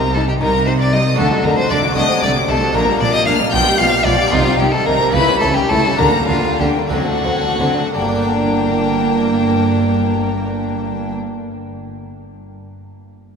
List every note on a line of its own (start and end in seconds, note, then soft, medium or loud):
0.00 0.31 C2 medium
0.00 0.29 C3 medium
0.00 0.31 C3 medium
0.00 1.13 D#4 medium
0.00 1.14 G4 medium
0.00 0.16 A#4 medium
0.00 0.14 A#5 medium
0.14 0.22 G3 medium
0.14 0.24 D#4 medium
0.14 0.27 A4 medium
0.14 0.28 A5 loud
0.28 0.34 G4 medium
0.28 0.33 G5 medium
0.40 1.10 C2 medium
0.40 1.09 C3 medium
0.40 1.07 C3 medium
0.40 0.49 G3 medium
0.40 0.49 D#4 medium
0.40 0.66 A#4 medium
0.40 0.66 A#5 loud
0.66 0.75 G3 medium
0.66 0.75 D#4 medium
0.66 0.72 C5 medium
0.66 0.80 C6 medium
0.79 0.94 D5 medium
0.79 0.85 D6 loud
0.92 1.01 G3 medium
0.92 1.00 D#4 medium
0.92 1.18 D#5 medium
0.92 1.18 D#6 loud
1.14 1.91 A3 medium
1.14 1.30 A3 medium
1.14 1.93 D4 medium
1.14 1.93 F#4 medium
1.18 1.27 D2 medium
1.18 1.26 D3 medium
1.18 1.42 D3 medium
1.18 1.31 D4 medium
1.18 1.46 A4 medium
1.18 1.27 A5 loud
1.31 1.44 F#3 medium
1.31 1.44 F#4 medium
1.43 1.53 D2 medium
1.43 1.52 D3 medium
1.43 1.68 D3 medium
1.43 1.57 A3 medium
1.43 1.57 D4 medium
1.43 1.57 A#4 medium
1.43 1.57 A#5 medium
1.57 1.71 F#3 medium
1.57 1.70 F#4 medium
1.57 1.70 C5 medium
1.57 1.70 C6 loud
1.70 1.79 D2 medium
1.70 1.78 D3 medium
1.70 1.94 D3 medium
1.70 1.83 A3 medium
1.70 1.83 D4 medium
1.70 1.78 D5 medium
1.70 1.97 D6 loud
1.83 1.96 F#3 medium
1.83 1.97 F#4 medium
1.92 2.04 C3 medium
1.92 2.70 A3 medium
1.92 2.08 A3 medium
1.92 2.71 D4 medium
1.92 2.71 F#4 medium
1.96 2.05 C2 medium
1.96 2.20 C3 medium
1.96 2.09 D4 medium
1.96 2.22 D#5 medium
1.96 2.22 D#6 loud
2.09 2.22 F#3 medium
2.09 2.22 C4 medium
2.22 2.31 C2 medium
2.22 2.30 C3 medium
2.22 2.46 C3 medium
2.22 2.35 A3 medium
2.22 2.35 D4 medium
2.22 2.31 D5 loud
2.22 2.48 D6 loud
2.34 2.48 F#3 medium
2.34 2.48 C4 medium
2.47 2.57 C2 medium
2.47 2.56 C3 medium
2.47 2.72 C3 medium
2.47 2.60 A3 medium
2.47 2.61 D4 medium
2.47 2.76 A4 loud
2.47 2.74 A5 loud
2.61 2.74 F#3 medium
2.61 2.75 C4 medium
2.72 2.82 A#1 medium
2.72 2.82 A#2 medium
2.72 2.98 A#2 medium
2.72 2.86 A#3 medium
2.72 3.49 D4 medium
2.72 2.87 D4 medium
2.72 3.50 G4 medium
2.72 3.02 A#4 medium
2.72 3.00 A#5 loud
2.86 3.00 G3 medium
2.86 3.01 A#3 medium
2.99 3.08 A#1 medium
2.99 3.09 A#2 medium
2.99 3.24 A#2 medium
2.99 3.13 A#3 medium
2.99 3.14 D4 medium
2.99 3.13 D5 loud
2.99 3.14 D6 loud
3.13 3.26 G3 medium
3.13 3.27 A#3 medium
3.13 3.25 D#5 loud
3.13 3.27 D#6 loud
3.26 3.34 A#1 medium
3.26 3.50 A#2 medium
3.26 3.35 A#2 medium
3.26 3.38 A#3 medium
3.26 3.39 D4 medium
3.26 3.34 F5 medium
3.26 3.53 F6 loud
3.39 3.53 G3 medium
3.39 3.53 A#3 medium
3.50 3.61 B1 medium
3.50 3.61 B2 medium
3.50 3.77 B2 medium
3.50 3.65 F3 medium
3.50 4.28 F4 medium
3.50 4.29 G4 medium
3.50 3.79 G5 loud
3.50 3.78 G6 loud
3.54 3.66 F4 medium
3.66 3.79 G3 medium
3.66 3.80 G4 medium
3.78 3.86 B1 medium
3.78 3.87 B2 medium
3.78 4.03 B2 medium
3.78 3.93 F3 medium
3.78 3.93 F4 medium
3.78 4.06 F5 loud
3.78 4.05 F6 loud
3.92 4.05 G3 medium
3.92 4.06 G4 medium
4.04 4.13 B1 medium
4.04 4.13 B2 medium
4.04 4.30 B2 medium
4.04 4.18 F3 medium
4.04 4.19 F4 medium
4.04 4.33 D5 loud
4.04 4.31 D6 loud
4.18 4.32 G3 medium
4.18 4.32 G4 medium
4.29 4.40 C2 loud
4.29 4.40 C3 medium
4.29 4.56 C3 medium
4.29 4.44 D#3 medium
4.29 5.10 D#4 medium
4.29 4.45 D#4 medium
4.29 4.58 F4 loud
4.29 5.10 G4 medium
4.29 4.58 F5 loud
4.45 4.59 G3 medium
4.45 4.59 C4 medium
4.59 4.67 C2 medium
4.59 4.67 C3 medium
4.59 4.83 C3 medium
4.59 4.72 D#3 medium
4.59 4.72 D#4 medium
4.59 4.73 G4 medium
4.59 4.72 G5 medium
4.71 4.86 G3 medium
4.71 4.86 C4 medium
4.71 4.87 A4 loud
4.71 4.87 A5 loud
4.86 4.94 C2 medium
4.86 4.94 C3 medium
4.86 5.11 C3 medium
4.86 4.99 D#3 medium
4.86 4.99 D#4 medium
4.86 5.14 A#4 medium
4.86 5.13 A#5 loud
4.99 5.13 G3 medium
4.99 5.14 C4 medium
5.11 5.22 C#2 medium
5.11 5.21 C#3 medium
5.11 5.39 C#3 medium
5.11 5.26 A3 medium
5.11 5.95 E4 medium
5.11 5.26 E4 medium
5.11 5.96 G4 medium
5.11 5.39 B4 loud
5.11 5.41 B5 loud
5.27 5.41 G3 medium
5.27 5.41 C#4 medium
5.40 5.49 C#2 medium
5.40 5.67 C#3 medium
5.40 5.50 C#3 medium
5.40 5.56 A3 medium
5.40 5.55 E4 medium
5.40 5.56 A4 medium
5.40 5.48 A5 loud
5.54 5.70 G3 medium
5.54 5.69 C#4 medium
5.54 5.71 G4 medium
5.54 5.62 G5 medium
5.69 5.78 C#2 medium
5.69 5.77 C#3 medium
5.69 5.96 C#3 medium
5.69 5.83 A3 medium
5.69 5.83 E4 medium
5.69 6.00 A4 loud
5.69 5.98 A5 loud
5.84 5.99 G3 medium
5.84 6.00 C#4 medium
5.96 6.07 D2 medium
5.96 6.26 D3 medium
5.96 6.07 D3 medium
5.96 6.13 A#3 medium
5.96 6.88 D4 medium
5.96 6.13 D4 medium
5.96 6.88 G4 medium
5.96 6.27 A#4 medium
5.96 6.28 A#5 loud
6.13 6.29 G3 medium
6.13 6.28 A#3 medium
6.28 6.37 D2 medium
6.28 6.57 D3 medium
6.28 6.37 D3 medium
6.28 6.44 A#3 medium
6.28 6.44 D4 medium
6.28 6.59 F4 medium
6.28 6.59 F5 loud
6.43 6.60 G3 medium
6.43 6.59 A#3 medium
6.58 6.68 D2 medium
6.58 6.68 D3 medium
6.58 6.89 D3 medium
6.58 6.75 A#3 medium
6.58 6.74 D4 medium
6.58 6.68 G4 medium
6.58 6.92 G5 medium
6.75 6.92 G3 medium
6.75 6.91 A#3 medium
6.87 7.89 C4 medium
6.87 7.07 C4 medium
6.87 7.90 D4 medium
6.87 7.91 A4 medium
6.87 7.92 F#5 loud
6.92 7.00 D2 medium
6.92 7.00 D3 medium
6.92 7.22 D3 medium
6.92 7.07 F#3 medium
6.92 7.93 F#4 medium
7.08 7.25 A3 medium
7.08 7.25 D4 medium
7.25 7.33 D2 medium
7.25 7.33 D3 medium
7.25 7.56 D3 medium
7.25 7.42 F#3 medium
7.25 7.42 C4 medium
7.42 7.60 A3 medium
7.42 7.59 D4 medium
7.59 7.67 D2 medium
7.59 7.67 D3 medium
7.59 7.91 D3 medium
7.59 7.76 F#3 medium
7.59 7.76 C4 medium
7.76 7.95 A3 medium
7.76 7.93 D4 medium
7.94 11.12 G1 medium
7.94 11.12 G2 medium
7.94 11.13 G3 medium
7.94 11.13 A#3 medium
7.94 11.12 D4 medium
7.94 11.12 A#4 medium
7.94 11.12 G5 medium
8.02 11.20 A#3 medium
8.08 11.27 D4 medium
8.16 11.34 G4 medium
8.23 11.41 D5 medium